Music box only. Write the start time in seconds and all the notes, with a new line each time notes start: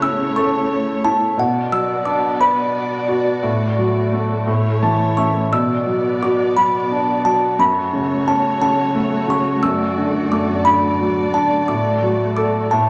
0.02 E6
0.36 C#6
1.04 A5
1.39 F#5
1.72 E6
2.05 D6
2.41 B5
5.17 C#6
5.53 E6
6.23 D6
6.57 B5
7.25 A5
7.60 B5
8.28 A5
8.62 A5
9.30 C#6
9.63 E6
10.32 D6
10.65 B5
11.34 A5
11.68 D6
12.37 D6
12.71 A5